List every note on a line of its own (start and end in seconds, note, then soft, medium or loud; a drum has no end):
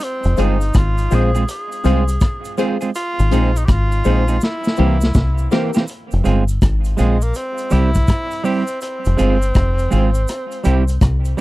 0.00 0.42 C4 loud
0.00 closed hi-hat medium
0.00 cabasa medium
0.24 0.37 F1 loud
0.24 closed hi-hat medium
0.24 cabasa soft
0.37 0.71 G1 medium
0.37 0.56 G#3 medium
0.37 0.63 C4 loud
0.37 0.56 C4 medium
0.37 0.79 D#4 medium
0.37 0.63 F4 medium
0.37 0.56 F4 medium
0.37 0.63 G#4 medium
0.37 0.57 G#4 medium
0.37 0.63 C5 loud
0.37 closed hi-hat medium
0.37 cabasa soft
0.61 closed hi-hat soft
0.61 cabasa medium
0.74 1.07 G#1 medium
0.74 1.16 F4 medium
0.74 kick loud
0.74 cross-stick loud
0.74 closed hi-hat medium
0.74 cabasa medium
0.98 closed hi-hat medium
0.98 cabasa soft
1.11 1.44 A#1 medium
1.11 1.29 G#3 medium
1.11 1.36 C4 medium
1.11 1.30 C4 medium
1.11 1.36 F4 medium
1.11 1.30 F4 medium
1.11 1.37 G#4 medium
1.11 1.30 G#4 medium
1.11 1.50 G#4 medium
1.11 1.37 C5 loud
1.11 closed hi-hat medium
1.11 cabasa medium
1.34 1.44 G#3 medium
1.34 1.43 C4 medium
1.34 1.43 F4 medium
1.34 1.43 G#4 medium
1.34 closed hi-hat soft
1.34 cabasa medium
1.48 2.56 G#4 medium
1.48 closed hi-hat medium
1.48 cabasa medium
1.72 closed hi-hat medium
1.72 cabasa medium
1.84 2.17 C2 medium
1.84 2.02 G#3 medium
1.84 2.10 C4 medium
1.84 2.03 C4 medium
1.84 2.10 F4 medium
1.84 2.03 F4 medium
1.84 2.10 G#4 medium
1.84 2.03 G#4 loud
1.84 2.10 C5 loud
1.84 closed hi-hat medium
1.84 cabasa medium
2.08 closed hi-hat medium
2.08 cabasa medium
2.21 kick loud
2.21 cross-stick loud
2.21 closed hi-hat medium
2.21 cabasa medium
2.45 closed hi-hat medium
2.45 cabasa medium
2.58 2.76 G#3 medium
2.58 2.83 C4 medium
2.58 2.76 C4 medium
2.58 2.83 F4 medium
2.58 2.76 F4 medium
2.58 2.84 G#4 medium
2.58 2.77 G#4 medium
2.58 2.84 C5 loud
2.58 closed hi-hat medium
2.58 cabasa medium
2.81 2.90 G#3 medium
2.81 2.90 C4 medium
2.81 2.90 F4 medium
2.81 2.89 G#4 medium
2.81 closed hi-hat soft
2.81 cabasa medium
2.95 3.59 F4 loud
2.95 closed hi-hat medium
2.95 cabasa medium
3.19 3.31 G#1 medium
3.19 closed hi-hat medium
3.19 cabasa medium
3.31 3.65 A#1 medium
3.31 3.50 G#3 medium
3.31 3.57 C4 loud
3.31 3.50 C4 medium
3.31 3.57 D#4 medium
3.31 3.50 D#4 medium
3.31 3.57 G#4 medium
3.31 3.50 G#4 medium
3.31 3.57 C5 loud
3.31 closed hi-hat medium
3.31 cabasa soft
3.56 3.67 D#4 medium
3.56 closed hi-hat soft
3.56 cabasa medium
3.65 4.01 G#1 medium
3.65 3.72 G4 medium
3.65 kick loud
3.65 cross-stick loud
3.65 closed hi-hat medium
3.65 cabasa medium
3.71 4.43 F4 loud
3.92 closed hi-hat medium
3.92 cabasa soft
4.04 4.38 A#1 medium
4.04 4.23 G#3 medium
4.04 4.30 C4 medium
4.04 4.23 C4 medium
4.04 4.30 D#4 medium
4.04 4.24 D#4 medium
4.04 4.31 G#4 medium
4.04 4.24 G#4 medium
4.04 4.31 C5 loud
4.04 closed hi-hat medium
4.04 cabasa medium
4.28 4.37 G#3 medium
4.28 4.37 C4 soft
4.28 4.37 D#4 medium
4.28 4.36 G#4 medium
4.28 closed hi-hat soft
4.28 cabasa medium
4.41 5.49 E4 medium
4.41 snare medium
4.41 cabasa medium
4.64 snare medium
4.64 cabasa soft
4.77 5.11 C2 loud
4.77 4.96 E3 medium
4.77 4.96 A#3 medium
4.77 5.03 C4 medium
4.77 4.97 C4 medium
4.77 5.04 E4 medium
4.77 5.04 G4 medium
4.77 4.97 G4 medium
4.77 5.04 A#4 loud
4.77 cabasa medium
5.01 snare medium
5.01 cabasa medium
5.14 5.47 C2 medium
5.14 kick loud
5.14 snare medium
5.14 cabasa medium
5.38 cabasa soft
5.51 5.70 E3 medium
5.51 5.70 A#3 medium
5.51 5.77 C4 loud
5.51 5.70 C4 medium
5.51 5.77 E4 medium
5.51 5.77 G4 medium
5.51 5.70 G4 loud
5.51 5.77 A#4 loud
5.51 snare loud
5.51 cabasa medium
5.74 5.84 E3 soft
5.74 5.84 A#3 soft
5.74 5.83 C4 medium
5.74 5.83 G4 medium
5.74 snare medium
5.74 cabasa medium
5.88 closed hi-hat medium
5.88 cabasa medium
6.11 6.24 F1 medium
6.11 closed hi-hat soft
6.11 cabasa soft
6.24 6.58 G1 medium
6.24 6.42 G#3 medium
6.24 6.43 C4 medium
6.24 6.43 F4 medium
6.24 6.43 G#4 medium
6.24 closed hi-hat medium
6.24 cabasa soft
6.48 closed hi-hat soft
6.48 cabasa medium
6.62 6.95 G#1 medium
6.62 kick loud
6.62 cross-stick loud
6.62 closed hi-hat medium
6.62 cabasa medium
6.84 closed hi-hat medium
6.84 cabasa soft
6.97 7.32 A#1 medium
6.97 7.16 G#3 medium
6.97 7.25 G#3 medium
6.97 7.16 C4 medium
6.97 7.16 F4 medium
6.97 7.17 G#4 medium
6.97 closed hi-hat medium
6.97 cabasa medium
7.21 7.38 A#3 medium
7.21 closed hi-hat soft
7.21 cabasa medium
7.34 7.74 C4 medium
7.34 closed hi-hat medium
7.34 cabasa medium
7.58 closed hi-hat soft
7.58 cabasa soft
7.70 8.04 C2 medium
7.70 7.89 G3 medium
7.70 7.89 C4 medium
7.70 7.90 E4 medium
7.70 8.46 E4 loud
7.70 7.90 G4 loud
7.70 closed hi-hat medium
7.70 cabasa medium
7.94 kick medium
7.94 closed hi-hat medium
7.94 cabasa medium
8.08 kick loud
8.08 cross-stick loud
8.08 closed hi-hat medium
8.08 cabasa medium
8.31 closed hi-hat medium
8.31 cabasa soft
8.44 8.62 G3 medium
8.44 8.63 C4 medium
8.44 8.81 C4 loud
8.44 8.63 E4 medium
8.44 8.63 G4 medium
8.44 open hi-hat soft
8.44 cabasa medium
8.67 closed hi-hat soft
8.67 cabasa medium
8.81 10.98 C4 medium
8.81 closed hi-hat medium
8.81 cabasa medium
9.05 9.18 F1 medium
9.05 closed hi-hat medium
9.05 cabasa soft
9.17 9.51 G1 medium
9.17 9.36 G#3 medium
9.17 9.36 C4 loud
9.17 9.36 F4 medium
9.17 9.36 G#4 loud
9.17 closed hi-hat medium
9.17 cabasa soft
9.42 closed hi-hat soft
9.42 cabasa medium
9.55 9.88 F1 medium
9.55 kick loud
9.55 cross-stick loud
9.55 closed hi-hat medium
9.55 cabasa medium
9.79 closed hi-hat medium
9.79 cabasa soft
9.91 10.25 G#1 medium
9.91 10.09 G#3 medium
9.91 10.09 C4 medium
9.91 10.10 F4 medium
9.91 10.10 G#4 medium
9.91 closed hi-hat medium
9.91 cabasa medium
10.14 closed hi-hat soft
10.14 cabasa medium
10.28 cross-stick medium
10.28 closed hi-hat medium
10.28 cabasa medium
10.52 closed hi-hat soft
10.52 cabasa soft
10.64 10.98 C2 medium
10.64 10.82 G3 medium
10.64 10.83 C4 medium
10.64 10.83 E4 medium
10.64 10.83 G4 loud
10.64 closed hi-hat medium
10.64 cabasa medium
10.88 closed hi-hat medium
10.88 cabasa medium
11.01 11.34 C2 medium
11.01 kick loud
11.01 cross-stick loud
11.01 closed hi-hat medium
11.01 cabasa medium
11.25 closed hi-hat medium
11.25 cabasa medium
11.37 11.41 G3 medium